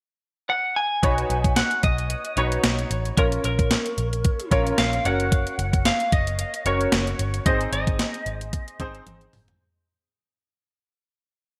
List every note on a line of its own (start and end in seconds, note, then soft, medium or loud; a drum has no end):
0.50 0.75 F#5 medium
0.76 1.53 G#5 loud
1.02 1.22 B1 loud
1.02 2.00 D#4 medium
1.02 2.00 F#4 medium
1.02 2.00 B4 medium
1.02 2.00 C#5 medium
1.02 kick loud
1.02 closed hi-hat medium
1.18 closed hi-hat soft
1.30 1.60 B1 medium
1.30 closed hi-hat medium
1.44 kick medium
1.44 closed hi-hat soft
1.56 1.83 F#5 medium
1.56 snare loud
1.56 closed hi-hat medium
1.71 closed hi-hat soft
1.83 2.13 B1 medium
1.83 2.39 D#5 medium
1.83 kick medium
1.83 closed hi-hat medium
1.98 closed hi-hat medium
2.10 closed hi-hat medium
2.25 closed hi-hat medium
2.37 2.56 B1 medium
2.37 3.10 D#4 medium
2.37 3.10 F#4 medium
2.37 3.10 B4 medium
2.37 3.20 C#5 medium
2.37 3.10 C#5 medium
2.37 closed hi-hat medium
2.52 closed hi-hat medium
2.64 2.83 B1 loud
2.64 snare loud
2.64 closed hi-hat medium
2.79 closed hi-hat soft
2.90 3.10 A1 medium
2.90 closed hi-hat medium
3.05 closed hi-hat soft
3.17 3.37 A#1 loud
3.17 4.14 C#4 medium
3.17 4.14 F4 medium
3.17 4.15 A#4 medium
3.17 3.26 A#4 medium
3.17 4.15 C#5 medium
3.17 kick loud
3.17 closed hi-hat medium
3.32 closed hi-hat soft
3.44 3.74 A#1 medium
3.44 4.48 A#4 medium
3.44 closed hi-hat medium
3.59 kick medium
3.59 closed hi-hat soft
3.71 snare loud
3.71 closed hi-hat medium
3.86 closed hi-hat soft
3.98 4.28 A#1 medium
3.98 closed hi-hat medium
4.13 closed hi-hat medium
4.24 kick medium
4.24 closed hi-hat medium
4.40 closed hi-hat medium
4.51 4.71 A#1 medium
4.51 5.03 C#4 medium
4.51 5.05 F4 medium
4.51 5.04 A#4 medium
4.51 5.04 C#5 medium
4.51 kick medium
4.51 closed hi-hat medium
4.67 closed hi-hat medium
4.78 4.98 A#1 medium
4.78 5.05 F5 medium
4.78 snare loud
4.78 closed hi-hat medium
4.93 closed hi-hat soft
5.05 5.44 F#1 medium
5.05 6.02 C#4 medium
5.05 6.02 F#4 medium
5.05 6.02 A#4 medium
5.05 6.02 C#5 medium
5.05 5.86 F#5 loud
5.05 closed hi-hat medium
5.20 closed hi-hat soft
5.32 kick loud
5.32 closed hi-hat medium
5.47 closed hi-hat soft
5.59 5.89 F#1 loud
5.59 closed hi-hat medium
5.73 kick medium
5.73 closed hi-hat medium
5.85 6.11 F5 loud
5.85 snare loud
5.85 closed hi-hat medium
6.00 closed hi-hat soft
6.12 6.42 F#1 medium
6.12 6.62 D#5 medium
6.12 kick medium
6.12 closed hi-hat medium
6.27 closed hi-hat medium
6.39 closed hi-hat medium
6.54 closed hi-hat medium
6.66 6.85 F#1 loud
6.66 7.38 C#4 medium
6.66 7.38 F#4 medium
6.66 7.39 A#4 medium
6.66 7.46 C#5 medium
6.66 7.39 C#5 medium
6.66 closed hi-hat medium
6.81 closed hi-hat medium
6.92 7.12 F#1 loud
6.92 snare loud
6.92 closed hi-hat medium
7.07 closed hi-hat soft
7.19 7.38 G1 medium
7.19 closed hi-hat medium
7.34 closed hi-hat soft
7.46 7.65 G#1 loud
7.46 8.43 C4 medium
7.46 8.43 D#4 medium
7.46 8.43 G#4 medium
7.46 8.43 C5 medium
7.46 7.72 D#5 medium
7.46 kick loud
7.46 closed hi-hat medium
7.61 closed hi-hat medium
7.72 8.02 G#1 medium
7.72 8.76 D#5 medium
7.72 closed hi-hat medium
7.87 kick medium
7.87 closed hi-hat soft
7.99 snare loud
7.99 closed hi-hat medium
8.14 closed hi-hat soft
8.26 8.56 G#1 loud
8.26 closed hi-hat medium
8.41 closed hi-hat medium
8.53 kick medium
8.53 closed hi-hat medium
8.68 closed hi-hat medium
8.79 8.99 G#1 medium
8.79 9.52 C4 medium
8.79 9.53 D#4 medium
8.79 9.53 G#4 medium
8.79 9.53 C5 loud
8.79 kick medium
8.79 closed hi-hat medium
8.95 closed hi-hat medium
9.07 9.26 G#1 loud
9.07 closed hi-hat medium
9.07 high tom medium
9.21 closed hi-hat soft
9.33 9.53 G1 loud
9.33 mid tom medium
9.33 open hi-hat medium
9.48 closed hi-hat soft
9.48 floor tom medium